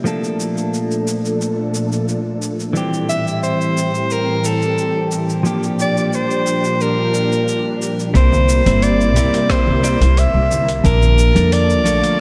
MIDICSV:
0, 0, Header, 1, 6, 480
1, 0, Start_track
1, 0, Tempo, 674157
1, 44, Time_signature, 4, 2, 24, 8
1, 8687, End_track
2, 0, Start_track
2, 0, Title_t, "Soprano saxophone"
2, 0, Program_c, 0, 64
2, 2202, Note_on_c, 0, 76, 98
2, 2426, Note_off_c, 0, 76, 0
2, 2444, Note_on_c, 0, 72, 94
2, 2931, Note_on_c, 0, 70, 86
2, 2942, Note_off_c, 0, 72, 0
2, 3177, Note_on_c, 0, 69, 79
2, 3188, Note_off_c, 0, 70, 0
2, 3650, Note_off_c, 0, 69, 0
2, 4140, Note_on_c, 0, 74, 90
2, 4325, Note_off_c, 0, 74, 0
2, 4325, Note_on_c, 0, 74, 67
2, 4376, Note_on_c, 0, 72, 92
2, 4387, Note_off_c, 0, 74, 0
2, 4853, Note_on_c, 0, 70, 88
2, 4864, Note_off_c, 0, 72, 0
2, 5568, Note_off_c, 0, 70, 0
2, 5809, Note_on_c, 0, 72, 93
2, 6285, Note_on_c, 0, 74, 97
2, 6296, Note_off_c, 0, 72, 0
2, 6770, Note_on_c, 0, 72, 94
2, 6780, Note_off_c, 0, 74, 0
2, 7250, Note_on_c, 0, 76, 97
2, 7261, Note_off_c, 0, 72, 0
2, 7612, Note_off_c, 0, 76, 0
2, 7729, Note_on_c, 0, 70, 105
2, 8207, Note_on_c, 0, 74, 103
2, 8217, Note_off_c, 0, 70, 0
2, 8687, Note_off_c, 0, 74, 0
2, 8687, End_track
3, 0, Start_track
3, 0, Title_t, "Clean electric guitar"
3, 0, Program_c, 1, 27
3, 29, Note_on_c, 1, 53, 60
3, 35, Note_on_c, 1, 57, 60
3, 42, Note_on_c, 1, 58, 59
3, 49, Note_on_c, 1, 62, 58
3, 54, Note_on_c, 1, 69, 68
3, 1929, Note_off_c, 1, 53, 0
3, 1932, Note_off_c, 1, 57, 0
3, 1935, Note_off_c, 1, 58, 0
3, 1939, Note_off_c, 1, 62, 0
3, 1941, Note_off_c, 1, 69, 0
3, 1946, Note_on_c, 1, 52, 65
3, 1955, Note_on_c, 1, 55, 57
3, 1969, Note_on_c, 1, 60, 60
3, 1974, Note_on_c, 1, 67, 69
3, 3847, Note_off_c, 1, 52, 0
3, 3852, Note_off_c, 1, 55, 0
3, 3859, Note_off_c, 1, 60, 0
3, 3861, Note_off_c, 1, 67, 0
3, 3868, Note_on_c, 1, 53, 67
3, 3876, Note_on_c, 1, 55, 63
3, 3882, Note_on_c, 1, 58, 63
3, 3890, Note_on_c, 1, 62, 61
3, 3893, Note_on_c, 1, 67, 74
3, 5768, Note_off_c, 1, 53, 0
3, 5772, Note_off_c, 1, 55, 0
3, 5775, Note_off_c, 1, 58, 0
3, 5779, Note_off_c, 1, 62, 0
3, 5781, Note_off_c, 1, 67, 0
3, 5795, Note_on_c, 1, 55, 70
3, 5799, Note_on_c, 1, 58, 67
3, 5803, Note_on_c, 1, 60, 69
3, 5809, Note_on_c, 1, 64, 59
3, 5810, Note_on_c, 1, 70, 76
3, 6134, Note_off_c, 1, 55, 0
3, 6137, Note_off_c, 1, 58, 0
3, 6139, Note_off_c, 1, 60, 0
3, 6140, Note_off_c, 1, 64, 0
3, 6142, Note_off_c, 1, 70, 0
3, 6166, Note_on_c, 1, 58, 90
3, 6167, Note_on_c, 1, 55, 81
3, 6171, Note_on_c, 1, 60, 83
3, 6175, Note_on_c, 1, 64, 81
3, 6176, Note_on_c, 1, 72, 101
3, 6495, Note_off_c, 1, 55, 0
3, 6495, Note_off_c, 1, 58, 0
3, 6497, Note_off_c, 1, 60, 0
3, 6498, Note_off_c, 1, 64, 0
3, 6500, Note_off_c, 1, 72, 0
3, 6514, Note_on_c, 1, 55, 96
3, 6517, Note_on_c, 1, 58, 77
3, 6522, Note_on_c, 1, 60, 79
3, 6524, Note_on_c, 1, 64, 82
3, 6529, Note_on_c, 1, 70, 104
3, 6976, Note_off_c, 1, 55, 0
3, 6978, Note_off_c, 1, 58, 0
3, 6979, Note_off_c, 1, 60, 0
3, 6981, Note_off_c, 1, 64, 0
3, 6983, Note_off_c, 1, 70, 0
3, 6995, Note_on_c, 1, 58, 95
3, 6999, Note_on_c, 1, 55, 89
3, 7001, Note_on_c, 1, 60, 88
3, 7007, Note_on_c, 1, 74, 119
3, 7008, Note_on_c, 1, 64, 74
3, 7101, Note_off_c, 1, 55, 0
3, 7101, Note_off_c, 1, 58, 0
3, 7103, Note_off_c, 1, 60, 0
3, 7106, Note_off_c, 1, 64, 0
3, 7107, Note_off_c, 1, 74, 0
3, 7716, Note_on_c, 1, 53, 74
3, 7722, Note_on_c, 1, 58, 66
3, 7728, Note_on_c, 1, 62, 63
3, 7730, Note_on_c, 1, 81, 80
3, 8055, Note_off_c, 1, 53, 0
3, 8059, Note_off_c, 1, 58, 0
3, 8060, Note_off_c, 1, 62, 0
3, 8062, Note_off_c, 1, 81, 0
3, 8079, Note_on_c, 1, 53, 89
3, 8086, Note_on_c, 1, 58, 87
3, 8086, Note_on_c, 1, 69, 80
3, 8089, Note_on_c, 1, 62, 87
3, 8095, Note_on_c, 1, 70, 96
3, 8412, Note_off_c, 1, 53, 0
3, 8413, Note_off_c, 1, 69, 0
3, 8415, Note_off_c, 1, 58, 0
3, 8417, Note_off_c, 1, 62, 0
3, 8418, Note_off_c, 1, 70, 0
3, 8430, Note_on_c, 1, 53, 95
3, 8434, Note_on_c, 1, 57, 91
3, 8439, Note_on_c, 1, 58, 77
3, 8440, Note_on_c, 1, 62, 91
3, 8443, Note_on_c, 1, 69, 103
3, 8687, Note_off_c, 1, 53, 0
3, 8687, Note_off_c, 1, 57, 0
3, 8687, Note_off_c, 1, 58, 0
3, 8687, Note_off_c, 1, 62, 0
3, 8687, Note_off_c, 1, 69, 0
3, 8687, End_track
4, 0, Start_track
4, 0, Title_t, "String machine"
4, 0, Program_c, 2, 50
4, 44, Note_on_c, 2, 46, 73
4, 45, Note_on_c, 2, 62, 69
4, 46, Note_on_c, 2, 53, 68
4, 46, Note_on_c, 2, 69, 79
4, 1945, Note_off_c, 2, 46, 0
4, 1945, Note_off_c, 2, 62, 0
4, 1946, Note_off_c, 2, 53, 0
4, 1946, Note_off_c, 2, 69, 0
4, 1960, Note_on_c, 2, 45, 80
4, 1961, Note_on_c, 2, 60, 70
4, 1963, Note_on_c, 2, 67, 87
4, 1964, Note_on_c, 2, 52, 71
4, 3863, Note_off_c, 2, 45, 0
4, 3863, Note_off_c, 2, 60, 0
4, 3865, Note_off_c, 2, 52, 0
4, 3879, Note_on_c, 2, 62, 69
4, 3880, Note_on_c, 2, 46, 81
4, 3882, Note_on_c, 2, 53, 72
4, 5775, Note_off_c, 2, 67, 0
4, 5782, Note_off_c, 2, 46, 0
4, 5782, Note_off_c, 2, 62, 0
4, 5784, Note_off_c, 2, 53, 0
4, 5800, Note_on_c, 2, 58, 77
4, 5801, Note_on_c, 2, 55, 72
4, 5802, Note_on_c, 2, 64, 90
4, 5803, Note_on_c, 2, 48, 83
4, 7703, Note_off_c, 2, 55, 0
4, 7703, Note_off_c, 2, 58, 0
4, 7703, Note_off_c, 2, 64, 0
4, 7704, Note_off_c, 2, 48, 0
4, 7721, Note_on_c, 2, 65, 91
4, 7722, Note_on_c, 2, 50, 90
4, 7722, Note_on_c, 2, 81, 73
4, 8687, Note_off_c, 2, 50, 0
4, 8687, Note_off_c, 2, 65, 0
4, 8687, Note_off_c, 2, 81, 0
4, 8687, End_track
5, 0, Start_track
5, 0, Title_t, "Upright bass"
5, 0, Program_c, 3, 32
5, 5803, Note_on_c, 3, 36, 96
5, 6119, Note_off_c, 3, 36, 0
5, 6168, Note_on_c, 3, 31, 86
5, 6522, Note_off_c, 3, 31, 0
5, 6522, Note_on_c, 3, 36, 72
5, 6617, Note_off_c, 3, 36, 0
5, 6887, Note_on_c, 3, 36, 83
5, 7067, Note_off_c, 3, 36, 0
5, 7125, Note_on_c, 3, 36, 87
5, 7306, Note_off_c, 3, 36, 0
5, 7362, Note_on_c, 3, 36, 84
5, 7675, Note_off_c, 3, 36, 0
5, 7724, Note_on_c, 3, 34, 92
5, 8040, Note_off_c, 3, 34, 0
5, 8087, Note_on_c, 3, 41, 93
5, 8442, Note_off_c, 3, 41, 0
5, 8442, Note_on_c, 3, 34, 77
5, 8537, Note_off_c, 3, 34, 0
5, 8687, End_track
6, 0, Start_track
6, 0, Title_t, "Drums"
6, 44, Note_on_c, 9, 82, 40
6, 115, Note_off_c, 9, 82, 0
6, 171, Note_on_c, 9, 82, 26
6, 242, Note_off_c, 9, 82, 0
6, 285, Note_on_c, 9, 82, 71
6, 356, Note_off_c, 9, 82, 0
6, 409, Note_on_c, 9, 82, 28
6, 481, Note_off_c, 9, 82, 0
6, 527, Note_on_c, 9, 82, 37
6, 598, Note_off_c, 9, 82, 0
6, 650, Note_on_c, 9, 82, 27
6, 722, Note_off_c, 9, 82, 0
6, 766, Note_on_c, 9, 82, 70
6, 838, Note_off_c, 9, 82, 0
6, 893, Note_on_c, 9, 82, 30
6, 964, Note_off_c, 9, 82, 0
6, 1007, Note_on_c, 9, 82, 41
6, 1078, Note_off_c, 9, 82, 0
6, 1242, Note_on_c, 9, 82, 67
6, 1314, Note_off_c, 9, 82, 0
6, 1370, Note_on_c, 9, 82, 30
6, 1441, Note_off_c, 9, 82, 0
6, 1486, Note_on_c, 9, 82, 39
6, 1557, Note_off_c, 9, 82, 0
6, 1724, Note_on_c, 9, 82, 66
6, 1795, Note_off_c, 9, 82, 0
6, 1850, Note_on_c, 9, 82, 27
6, 1921, Note_off_c, 9, 82, 0
6, 1964, Note_on_c, 9, 82, 40
6, 2035, Note_off_c, 9, 82, 0
6, 2090, Note_on_c, 9, 82, 30
6, 2161, Note_off_c, 9, 82, 0
6, 2204, Note_on_c, 9, 82, 72
6, 2275, Note_off_c, 9, 82, 0
6, 2331, Note_on_c, 9, 82, 30
6, 2403, Note_off_c, 9, 82, 0
6, 2446, Note_on_c, 9, 82, 41
6, 2517, Note_off_c, 9, 82, 0
6, 2572, Note_on_c, 9, 82, 27
6, 2643, Note_off_c, 9, 82, 0
6, 2687, Note_on_c, 9, 82, 76
6, 2758, Note_off_c, 9, 82, 0
6, 2809, Note_on_c, 9, 82, 32
6, 2880, Note_off_c, 9, 82, 0
6, 2923, Note_on_c, 9, 82, 41
6, 2994, Note_off_c, 9, 82, 0
6, 3165, Note_on_c, 9, 82, 71
6, 3236, Note_off_c, 9, 82, 0
6, 3290, Note_on_c, 9, 82, 31
6, 3361, Note_off_c, 9, 82, 0
6, 3405, Note_on_c, 9, 82, 40
6, 3476, Note_off_c, 9, 82, 0
6, 3643, Note_on_c, 9, 82, 72
6, 3714, Note_off_c, 9, 82, 0
6, 3770, Note_on_c, 9, 82, 29
6, 3842, Note_off_c, 9, 82, 0
6, 3883, Note_on_c, 9, 82, 42
6, 3955, Note_off_c, 9, 82, 0
6, 4011, Note_on_c, 9, 82, 28
6, 4082, Note_off_c, 9, 82, 0
6, 4126, Note_on_c, 9, 82, 67
6, 4197, Note_off_c, 9, 82, 0
6, 4252, Note_on_c, 9, 82, 30
6, 4323, Note_off_c, 9, 82, 0
6, 4365, Note_on_c, 9, 82, 38
6, 4436, Note_off_c, 9, 82, 0
6, 4490, Note_on_c, 9, 82, 29
6, 4561, Note_off_c, 9, 82, 0
6, 4604, Note_on_c, 9, 82, 75
6, 4675, Note_off_c, 9, 82, 0
6, 4729, Note_on_c, 9, 82, 33
6, 4801, Note_off_c, 9, 82, 0
6, 4847, Note_on_c, 9, 82, 39
6, 4918, Note_off_c, 9, 82, 0
6, 5086, Note_on_c, 9, 82, 68
6, 5157, Note_off_c, 9, 82, 0
6, 5215, Note_on_c, 9, 82, 30
6, 5286, Note_off_c, 9, 82, 0
6, 5328, Note_on_c, 9, 82, 41
6, 5399, Note_off_c, 9, 82, 0
6, 5567, Note_on_c, 9, 82, 68
6, 5639, Note_off_c, 9, 82, 0
6, 5692, Note_on_c, 9, 82, 28
6, 5763, Note_off_c, 9, 82, 0
6, 5802, Note_on_c, 9, 36, 118
6, 5804, Note_on_c, 9, 42, 61
6, 5806, Note_on_c, 9, 82, 44
6, 5873, Note_off_c, 9, 36, 0
6, 5875, Note_off_c, 9, 42, 0
6, 5877, Note_off_c, 9, 82, 0
6, 5926, Note_on_c, 9, 64, 87
6, 5933, Note_on_c, 9, 82, 31
6, 5997, Note_off_c, 9, 64, 0
6, 6004, Note_off_c, 9, 82, 0
6, 6045, Note_on_c, 9, 82, 77
6, 6116, Note_off_c, 9, 82, 0
6, 6169, Note_on_c, 9, 42, 47
6, 6171, Note_on_c, 9, 63, 86
6, 6171, Note_on_c, 9, 82, 34
6, 6240, Note_off_c, 9, 42, 0
6, 6242, Note_off_c, 9, 63, 0
6, 6242, Note_off_c, 9, 82, 0
6, 6283, Note_on_c, 9, 42, 51
6, 6285, Note_on_c, 9, 82, 43
6, 6354, Note_off_c, 9, 42, 0
6, 6356, Note_off_c, 9, 82, 0
6, 6414, Note_on_c, 9, 82, 30
6, 6485, Note_off_c, 9, 82, 0
6, 6523, Note_on_c, 9, 42, 51
6, 6526, Note_on_c, 9, 82, 77
6, 6594, Note_off_c, 9, 42, 0
6, 6597, Note_off_c, 9, 82, 0
6, 6649, Note_on_c, 9, 42, 48
6, 6652, Note_on_c, 9, 82, 32
6, 6721, Note_off_c, 9, 42, 0
6, 6723, Note_off_c, 9, 82, 0
6, 6761, Note_on_c, 9, 37, 80
6, 6761, Note_on_c, 9, 42, 57
6, 6763, Note_on_c, 9, 36, 126
6, 6764, Note_on_c, 9, 82, 43
6, 6832, Note_off_c, 9, 37, 0
6, 6832, Note_off_c, 9, 42, 0
6, 6834, Note_off_c, 9, 36, 0
6, 6835, Note_off_c, 9, 82, 0
6, 6887, Note_on_c, 9, 64, 83
6, 6959, Note_off_c, 9, 64, 0
6, 7005, Note_on_c, 9, 42, 31
6, 7007, Note_on_c, 9, 82, 74
6, 7076, Note_off_c, 9, 42, 0
6, 7079, Note_off_c, 9, 82, 0
6, 7129, Note_on_c, 9, 63, 101
6, 7132, Note_on_c, 9, 42, 46
6, 7134, Note_on_c, 9, 82, 33
6, 7201, Note_off_c, 9, 63, 0
6, 7203, Note_off_c, 9, 42, 0
6, 7205, Note_off_c, 9, 82, 0
6, 7243, Note_on_c, 9, 42, 56
6, 7246, Note_on_c, 9, 82, 42
6, 7315, Note_off_c, 9, 42, 0
6, 7317, Note_off_c, 9, 82, 0
6, 7368, Note_on_c, 9, 63, 67
6, 7439, Note_off_c, 9, 63, 0
6, 7486, Note_on_c, 9, 82, 72
6, 7491, Note_on_c, 9, 64, 84
6, 7557, Note_off_c, 9, 82, 0
6, 7562, Note_off_c, 9, 64, 0
6, 7608, Note_on_c, 9, 42, 42
6, 7610, Note_on_c, 9, 82, 30
6, 7679, Note_off_c, 9, 42, 0
6, 7681, Note_off_c, 9, 82, 0
6, 7723, Note_on_c, 9, 36, 116
6, 7723, Note_on_c, 9, 42, 60
6, 7725, Note_on_c, 9, 82, 43
6, 7794, Note_off_c, 9, 42, 0
6, 7795, Note_off_c, 9, 36, 0
6, 7797, Note_off_c, 9, 82, 0
6, 7848, Note_on_c, 9, 64, 87
6, 7849, Note_on_c, 9, 82, 34
6, 7919, Note_off_c, 9, 64, 0
6, 7920, Note_off_c, 9, 82, 0
6, 7965, Note_on_c, 9, 82, 81
6, 8036, Note_off_c, 9, 82, 0
6, 8087, Note_on_c, 9, 63, 90
6, 8088, Note_on_c, 9, 42, 46
6, 8091, Note_on_c, 9, 82, 35
6, 8159, Note_off_c, 9, 42, 0
6, 8159, Note_off_c, 9, 63, 0
6, 8162, Note_off_c, 9, 82, 0
6, 8205, Note_on_c, 9, 42, 54
6, 8207, Note_on_c, 9, 82, 42
6, 8276, Note_off_c, 9, 42, 0
6, 8278, Note_off_c, 9, 82, 0
6, 8330, Note_on_c, 9, 82, 32
6, 8401, Note_off_c, 9, 82, 0
6, 8444, Note_on_c, 9, 42, 51
6, 8446, Note_on_c, 9, 82, 78
6, 8515, Note_off_c, 9, 42, 0
6, 8517, Note_off_c, 9, 82, 0
6, 8570, Note_on_c, 9, 42, 45
6, 8572, Note_on_c, 9, 82, 37
6, 8641, Note_off_c, 9, 42, 0
6, 8643, Note_off_c, 9, 82, 0
6, 8687, End_track
0, 0, End_of_file